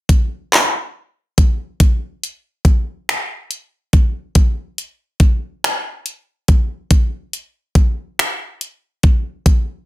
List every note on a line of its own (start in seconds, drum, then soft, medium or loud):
0.09 kick medium
0.09 closed hi-hat medium
0.54 clap loud
0.54 closed hi-hat medium
1.38 kick loud
1.38 closed hi-hat medium
1.80 kick medium
1.80 closed hi-hat medium
2.23 closed hi-hat soft
2.65 kick medium
2.65 closed hi-hat soft
3.09 finger snap loud
3.09 closed hi-hat medium
3.51 closed hi-hat soft
3.93 kick medium
3.93 closed hi-hat soft
4.35 kick medium
4.35 closed hi-hat medium
4.78 closed hi-hat soft
5.20 kick medium
5.20 closed hi-hat medium
5.64 finger snap loud
5.64 closed hi-hat medium
6.06 closed hi-hat soft
6.48 kick medium
6.48 closed hi-hat medium
6.91 kick loud
6.91 closed hi-hat medium
7.33 closed hi-hat soft
7.75 kick medium
7.75 closed hi-hat medium
8.19 finger snap loud
8.19 closed hi-hat medium
8.61 closed hi-hat soft
9.03 kick medium
9.03 closed hi-hat soft
9.46 kick loud
9.46 closed hi-hat medium